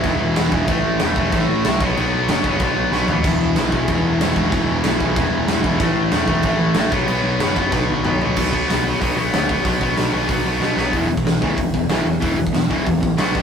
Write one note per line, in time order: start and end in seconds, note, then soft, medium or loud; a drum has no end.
0.04 0.18 E1 loud
0.04 0.35 E2 medium
0.04 0.35 B2 loud
0.04 0.36 E3 loud
0.04 kick loud
0.04 crash medium
0.20 0.35 E1 medium
0.36 0.51 E1 medium
0.36 0.51 E2 medium
0.36 0.51 B2 medium
0.36 0.50 E3 medium
0.36 snare loud
0.36 crash medium
0.51 0.67 E1 medium
0.51 0.67 E2 medium
0.51 0.67 B2 medium
0.51 0.67 E3 medium
0.51 kick loud
0.67 0.83 A1 loud
0.67 0.99 A2 loud
0.67 1.00 E3 medium
0.67 1.00 A3 loud
0.67 kick loud
0.67 crash medium
0.85 0.99 A1 medium
0.99 1.15 E1 medium
0.99 1.16 A2 medium
0.99 1.15 E3 medium
0.99 1.15 A3 medium
0.99 snare loud
0.99 crash medium
1.16 1.31 E1 medium
1.16 1.32 A2 medium
1.16 1.33 E3 medium
1.16 1.33 A3 loud
1.16 kick loud
1.32 1.47 A1 loud
1.32 1.63 A2 loud
1.32 1.64 E3 loud
1.32 1.64 A3 loud
1.32 kick loud
1.32 crash medium
1.49 1.63 A1 medium
1.64 1.81 C2 loud
1.64 1.79 A2 medium
1.64 1.80 E3 medium
1.64 1.80 A3 medium
1.64 snare loud
1.64 crash medium
1.80 1.95 B1 medium
1.80 1.97 B2 loud
1.80 1.96 F#3 loud
1.80 1.97 B3 loud
1.80 kick loud
1.97 2.11 B1 loud
1.97 2.29 B2 medium
1.97 2.29 F#3 medium
1.97 2.29 B3 loud
1.97 crash medium
2.14 2.28 B1 medium
2.28 2.43 F#1 medium
2.28 2.45 B2 medium
2.28 2.45 F#3 medium
2.28 2.46 B3 medium
2.28 snare loud
2.28 crash medium
2.44 2.59 F#1 medium
2.44 2.61 B2 medium
2.44 2.61 F#3 medium
2.44 2.61 B3 medium
2.44 kick loud
2.60 2.75 B1 loud
2.60 2.92 B2 medium
2.60 2.92 F#3 medium
2.60 2.93 B3 loud
2.60 kick loud
2.60 crash medium
2.76 2.90 B1 medium
2.91 3.06 B1 medium
2.91 3.08 B2 medium
2.91 3.09 F#3 medium
2.91 3.10 B3 medium
2.91 snare medium
3.07 3.25 D#2 medium
3.07 3.24 B2 medium
3.07 3.24 F#3 medium
3.07 5.80 B3 loud
3.07 floor tom loud
3.24 3.38 E1 loud
3.24 3.57 E2 loud
3.24 3.56 B2 loud
3.24 3.57 E3 loud
3.24 kick loud
3.24 splash medium
3.24 crash medium
3.41 3.55 E1 medium
3.56 3.71 B1 medium
3.56 3.73 E2 medium
3.56 3.72 B2 loud
3.56 3.72 E3 medium
3.56 snare loud
3.56 crash medium
3.72 3.87 B1 medium
3.72 3.88 E2 medium
3.72 3.88 B2 medium
3.72 3.89 E3 loud
3.72 kick medium
3.88 4.03 E1 loud
3.88 4.20 E2 loud
3.88 4.20 B2 loud
3.88 4.22 E3 loud
3.88 kick loud
3.88 crash medium
4.06 4.19 E1 medium
4.21 4.35 E1 loud
4.21 4.36 E2 medium
4.21 4.36 B2 medium
4.21 4.36 E3 medium
4.21 snare loud
4.21 crash medium
4.36 4.51 E1 medium
4.36 4.51 E2 medium
4.36 4.52 B2 medium
4.36 4.53 E3 loud
4.36 kick medium
4.52 4.67 E1 loud
4.52 4.83 E2 loud
4.52 4.84 B2 loud
4.52 4.85 E3 loud
4.52 kick loud
4.52 crash medium
4.70 4.84 E1 loud
4.84 4.99 B1 loud
4.84 5.00 E2 medium
4.84 4.99 B2 medium
4.84 4.99 E3 loud
4.84 snare loud
4.84 crash medium
5.00 5.15 B1 medium
5.00 5.15 E2 medium
5.00 5.16 B2 medium
5.00 5.17 E3 medium
5.00 kick medium
5.16 5.31 E1 loud
5.16 5.47 E2 loud
5.16 5.48 B2 loud
5.16 5.48 E3 loud
5.16 kick loud
5.16 crash medium
5.31 5.46 E1 medium
5.48 5.63 E1 loud
5.48 5.64 E2 medium
5.48 5.64 B2 medium
5.48 5.63 E3 loud
5.48 snare loud
5.48 crash medium
5.64 5.79 E1 medium
5.64 5.80 E2 medium
5.64 5.79 B2 medium
5.64 5.79 E3 loud
5.64 kick loud
5.79 5.95 A1 loud
5.79 6.11 A2 loud
5.79 6.11 E3 medium
5.79 6.12 A3 medium
5.79 kick loud
5.79 crash medium
5.96 6.10 A1 medium
6.12 6.27 E1 medium
6.12 6.27 A2 medium
6.12 6.27 E3 loud
6.12 6.26 A3 loud
6.12 snare loud
6.12 crash medium
6.27 6.42 E1 medium
6.27 6.43 A2 medium
6.27 6.44 E3 medium
6.27 6.44 A3 medium
6.27 kick medium
6.43 6.58 A1 loud
6.43 6.75 A2 loud
6.43 6.76 E3 loud
6.43 6.76 A3 loud
6.43 kick loud
6.43 crash medium
6.59 6.74 A1 medium
6.74 6.91 A1 loud
6.74 6.90 A2 medium
6.74 6.91 E3 medium
6.74 6.91 A3 loud
6.74 snare loud
6.74 crash medium
6.91 7.07 B1 medium
6.91 7.07 B2 loud
6.91 7.07 F#3 medium
6.91 7.07 B3 loud
6.91 kick loud
7.08 7.23 B1 loud
7.08 7.40 B2 medium
7.08 7.40 F#3 loud
7.08 7.39 B3 loud
7.08 crash medium
7.24 7.39 B1 medium
7.40 7.55 F#1 medium
7.40 7.55 B2 medium
7.40 7.56 F#3 medium
7.40 7.56 B3 loud
7.40 snare loud
7.40 crash medium
7.56 7.71 F#1 medium
7.56 7.71 B2 loud
7.56 7.71 F#3 medium
7.56 7.70 B3 medium
7.56 kick medium
7.71 7.87 B1 loud
7.71 8.04 B2 medium
7.71 8.04 F#3 loud
7.71 8.04 B3 loud
7.71 kick loud
7.71 snare medium
7.89 8.04 B1 medium
7.89 high tom medium
8.04 8.20 B1 medium
8.04 8.19 B2 medium
8.04 8.20 F#3 medium
8.04 8.20 B3 medium
8.04 mid tom loud
8.20 8.37 B1 medium
8.20 8.35 B2 medium
8.20 8.36 F#3 medium
8.20 8.36 B3 medium
8.20 floor tom medium
8.36 8.61 B1 loud
8.36 8.52 B2 medium
8.36 8.51 F#3 medium
8.36 8.51 B3 loud
8.36 kick loud
8.36 crash loud
8.51 8.68 B2 medium
8.51 8.68 F#3 medium
8.51 8.69 B3 loud
8.51 kick medium
8.68 8.93 B1 medium
8.68 8.85 B2 loud
8.68 8.85 F#3 loud
8.68 8.84 B3 loud
8.68 snare loud
8.68 open hi-hat medium
8.85 8.99 B2 medium
8.85 8.99 F#3 medium
8.85 9.01 B3 medium
9.00 9.13 B1 medium
9.00 9.16 B2 medium
9.00 9.15 F#3 loud
9.00 9.16 B3 loud
9.00 kick medium
9.00 open hi-hat medium
9.16 9.29 B1 medium
9.16 9.31 B2 medium
9.16 9.32 F#3 medium
9.16 9.33 B3 medium
9.32 9.57 D2 medium
9.32 9.48 B2 medium
9.32 9.47 F#3 medium
9.32 9.48 B3 medium
9.32 snare loud
9.32 open hi-hat medium
9.48 9.63 B2 medium
9.48 9.64 F#3 medium
9.48 9.65 B3 medium
9.48 kick medium
9.64 9.77 B1 loud
9.64 9.80 B2 loud
9.64 9.80 F#3 loud
9.64 9.79 B3 loud
9.64 kick loud
9.64 open hi-hat medium
9.80 9.93 B1 medium
9.80 9.96 B2 medium
9.80 9.96 F#3 medium
9.80 9.97 B3 loud
9.80 kick medium
9.97 10.09 B1 medium
9.97 10.13 B2 loud
9.97 10.12 F#3 loud
9.97 10.12 B3 loud
9.97 snare loud
9.97 open hi-hat medium
10.13 10.25 B1 medium
10.13 10.28 B2 medium
10.13 10.28 F#3 medium
10.13 10.28 B3 medium
10.29 10.41 B1 medium
10.29 10.45 B2 medium
10.29 10.44 F#3 loud
10.29 10.44 B3 loud
10.29 kick loud
10.29 open hi-hat medium
10.45 10.57 B1 medium
10.45 10.60 B2 medium
10.45 10.60 F#3 medium
10.45 10.61 B3 medium
10.60 10.73 B2 medium
10.60 10.77 B2 medium
10.60 10.76 F#3 medium
10.60 10.75 B3 loud
10.60 snare medium
10.76 10.89 B1 medium
10.76 10.92 B2 medium
10.76 10.93 F#3 medium
10.76 10.92 B3 medium
10.76 snare medium
10.92 11.15 E1 medium
10.92 11.08 E2 medium
10.92 11.08 B2 medium
10.92 11.09 E3 medium
10.92 kick loud
10.92 open hi-hat medium
11.09 11.24 E2 medium
11.09 11.24 B2 medium
11.17 kick medium
11.24 11.36 B1 medium
11.24 11.40 E2 medium
11.24 11.40 B2 medium
11.24 snare loud
11.24 open hi-hat soft
11.41 11.53 D2 medium
11.41 11.57 E2 medium
11.41 11.57 B2 medium
11.41 11.57 E3 medium
11.41 kick medium
11.57 11.69 E1 medium
11.57 11.73 E2 medium
11.57 11.73 B2 medium
11.57 kick loud
11.57 open hi-hat soft
11.74 11.86 E1 medium
11.74 11.88 E2 medium
11.74 11.88 B2 medium
11.74 kick medium
11.89 12.01 B1 medium
11.89 12.04 E2 medium
11.89 12.04 B2 medium
11.89 12.06 E3 medium
11.89 snare loud
11.89 open hi-hat medium
12.05 12.17 E1 medium
12.05 12.19 E2 medium
12.05 12.19 B2 medium
12.20 12.33 E1 medium
12.20 12.37 E2 medium
12.20 12.37 B2 medium
12.20 12.37 E3 loud
12.20 kick loud
12.20 open hi-hat medium
12.38 12.49 E1 medium
12.38 12.52 E2 medium
12.38 12.53 B2 medium
12.47 kick medium
12.53 12.76 E1 medium
12.53 12.69 E2 medium
12.53 12.69 B2 medium
12.53 snare loud
12.53 open hi-hat medium
12.70 12.85 E2 medium
12.70 12.85 B2 loud
12.70 12.86 E3 medium
12.70 kick medium
12.86 12.98 E1 loud
12.86 12.99 E2 medium
12.86 13.00 B2 medium
12.86 kick medium
12.86 open hi-hat medium
13.01 13.18 A1 medium
13.01 13.17 E2 medium
13.01 13.16 B2 medium
13.01 kick medium
13.17 13.37 B1 loud
13.17 13.34 B2 medium
13.17 13.34 F#3 medium
13.17 13.34 B3 medium
13.17 snare loud
13.17 open hi-hat medium
13.34 13.42 G1 medium
13.34 13.42 G2 medium
13.34 13.42 D3 medium
13.34 13.42 G3 medium
13.34 kick medium